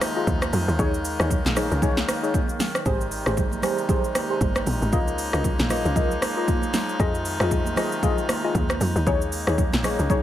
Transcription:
Already playing: woodwind section C3 D#3 F3 G#3 D#4
0.01 cross-stick, open hi-hat, high conga, shaker
0.16 synth stab F4 G#4 D#5
0.27 log drum bass D#2, kick, high conga, shaker
0.41 cross-stick, high conga, shaker
0.53 log drum bass F2, open hi-hat, low conga, shaker
0.68 log drum bass D#2, shaker
0.78 log drum bass D#2, woodwind section C#3 A#3, synth stab D#4 G#4 C#5, kick, shaker
0.94 shaker
1.05 open hi-hat, shaker
1.19 log drum bass D#2, synth stab D#4 G#4 C#5, cross-stick, shaker
1.31 kick, low conga, shaker
1.45 log drum bass A#1, snare, high conga, shaker
1.56 synth stab D#4 G#4 C#5, cross-stick, open hi-hat, high conga, low conga, shaker
1.71 log drum bass C#2, shaker
1.82 synth stab D#4 G#4 C#5, kick, low conga, shaker
1.97 snare, shaker
2.09 cross-stick, open hi-hat, high conga, shaker
2.23 synth stab D#4 G#4 C#5, shaker
2.34 kick, high conga, shaker
2.48 high conga, shaker
2.59 snare, open hi-hat, low conga, shaker
2.75 cross-stick, shaker
2.86 log drum bass G#1, woodwind section C3 G3 G#3 D#4, synth stab G4 G#4 C5, kick, shaker
3.01 shaker
3.11 open hi-hat, shaker
3.26 log drum bass G#1, synth stab G4 G#4 C5, cross-stick, shaker
3.37 kick, low conga, shaker
3.52 high conga, shaker
3.62 synth stab G4 G#4 C5, cross-stick, open hi-hat, high conga, low conga, shaker
3.78 shaker
3.89 synth stab G4 G#4 C5, kick, low conga, shaker
4.04 shaker
4.15 cross-stick, open hi-hat, high conga, shaker
4.30 synth stab G4 G#4 C5
4.41 log drum bass G1, kick, high conga, shaker
4.55 cross-stick, high conga, shaker
4.66 log drum bass A#1, open hi-hat, low conga, shaker
4.82 log drum bass G#1, shaker
4.92 log drum bass C#2, woodwind section C#3 F3 A#3, synth stab F4 A#4 D#5, kick, shaker
5.08 shaker
5.18 open hi-hat, shaker
5.33 log drum bass C#2, synth stab F4 A#4 D#5, cross-stick, shaker
5.44 kick, low conga, shaker
5.59 log drum bass A#1, snare, high conga, shaker
5.69 synth stab F4 A#4 D#5, cross-stick, open hi-hat, high conga, low conga, shaker
5.85 log drum bass C#2, shaker
5.96 synth stab F4 A#4 D#5, kick, low conga, shaker
6.11 shaker
6.22 cross-stick, open hi-hat, high conga, shaker
6.37 synth stab F4 A#4 D#5
6.48 kick, high conga, shaker
6.62 high conga, shaker
6.73 snare, open hi-hat, low conga, shaker
6.89 shaker
6.99 log drum bass F2, woodwind section C3 D#3, synth stab F4 G#4 D#5, kick, shaker
7.15 shaker
7.25 open hi-hat, shaker
7.40 log drum bass F2, synth stab F4 G#4 D#5, cross-stick, shaker
7.51 kick, low conga, shaker
7.65 high conga, shaker
7.76 synth stab F4 G#4 D#5, cross-stick, open hi-hat, high conga, low conga, shaker
7.92 shaker
8.03 synth stab F4 G#4 D#5, kick, low conga, shaker
8.18 shaker
8.29 cross-stick, open hi-hat, high conga, shaker
8.44 synth stab F4 G#4 D#5
8.55 log drum bass D#2, kick, high conga, shaker
8.69 cross-stick, high conga, shaker
8.80 log drum bass F2, open hi-hat, low conga, shaker
8.96 log drum bass D#2, shaker
9.06 log drum bass D#2, woodwind section C#3 D#3 A#3, synth stab D#4 G#4 C#5, kick, shaker
9.22 shaker
9.32 open hi-hat, shaker
9.47 log drum bass D#2, synth stab D#4 G#4 C#5, cross-stick, shaker
9.58 kick, low conga, shaker
9.72 log drum bass A#1, snare, high conga, shaker
9.83 synth stab D#4 G#4 C#5, cross-stick, open hi-hat, high conga, low conga, shaker
9.99 log drum bass C#2, shaker
10.10 synth stab D#4 G#4 C#5, kick, low conga, shaker

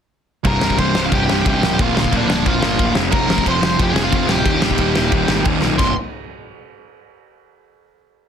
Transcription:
0.45 picked electric bass C1, overdriven electric guitar C2 G2 C3, lead electric guitar A#4 A#5, kick, crash
0.61 picked electric bass C1, overdriven electric guitar C2 G2 C3, snare
0.70 kick
0.78 picked electric bass C1, overdriven electric guitar C2 G2 C3, lead electric guitar C5 C6, kick, crash
0.95 overdriven electric guitar C2 G2 C3, snare
1.06 lead electric guitar F5
1.11 picked electric bass C1, overdriven electric guitar C2 G2 C3, lead electric guitar G4, kick, crash
1.15 lead electric guitar G5
1.29 overdriven electric guitar C2 G2 C3, snare
1.45 picked electric bass C#1, overdriven electric guitar C2 G2 C3, lead electric guitar G4, kick, crash
1.50 lead electric guitar G5
1.60 picked electric bass D1, overdriven electric guitar A#2 F3 A#3, snare
1.77 picked electric bass D1, overdriven electric guitar A#2 F3 A#3, kick, crash
1.82 lead electric guitar F4 F5
1.94 picked electric bass D1, overdriven electric guitar A#2 F3 A#3, snare
1.99 lead electric guitar F4 F5
2.04 kick
2.12 picked electric bass D1, overdriven electric guitar A#2 F3 A#3, lead electric guitar D4, kick, crash
2.17 lead electric guitar D5
2.28 picked electric bass D1, overdriven electric guitar A#2 F3 A#3, snare
2.46 picked electric bass D1, overdriven electric guitar A#2 F3 A#3, lead electric guitar F4 F5, kick, crash
2.62 picked electric bass G1, overdriven electric guitar A#2 F3 A#3, snare
2.79 picked electric bass D1, overdriven electric guitar A#2 F3 A#3, kick, crash
2.95 picked electric bass F1, overdriven electric guitar F2 C3 F3, snare
3.11 picked electric bass F1, overdriven electric guitar F2 C3 F3, lead electric guitar A#4 A#5, kick, crash
3.28 picked electric bass F1, overdriven electric guitar F2 C3 F3, snare
3.38 kick
3.44 picked electric bass F1, overdriven electric guitar F2 C3 F3, lead electric guitar C5, kick, crash
3.50 lead electric guitar C6
3.61 overdriven electric guitar F2 C3 F3, snare
3.78 picked electric bass F1, overdriven electric guitar F2 C3 F3, lead electric guitar G4, kick, crash
3.83 lead electric guitar G5
3.91 overdriven electric guitar F2 C3 F3, lead electric guitar G#4 G#5
3.96 snare
4.03 lead electric guitar F4 F5
4.10 picked electric bass F1, overdriven electric guitar F2 C3 F3, lead electric guitar F4, kick, crash
4.16 lead electric guitar F5
4.27 picked electric bass D1, overdriven electric guitar F2 C3 F3, lead electric guitar G4 G5, snare
4.44 picked electric bass D#1, overdriven electric guitar D#2 A#2 D#3, kick, crash
4.62 picked electric bass D#1, overdriven electric guitar D#2 A#2 D#3, snare
4.71 kick
4.78 picked electric bass D#1, overdriven electric guitar D#2 A#2 D#3, kick, crash
4.96 picked electric bass D#1, overdriven electric guitar D#2 A#2 D#3, snare
5.12 picked electric bass D#1, overdriven electric guitar D#2 A#2 D#3, kick, crash
5.28 picked electric bass G#1, overdriven electric guitar D#2 A#2 D#3, snare
5.45 picked electric bass D#1, overdriven electric guitar D#2 A#2 D#3, kick, crash
5.62 picked electric bass B1, overdriven electric guitar D#2 A#2 D#3, snare
5.78 picked electric bass C1, overdriven electric guitar C2 G2 C3, lead electric guitar C6, kick, crash

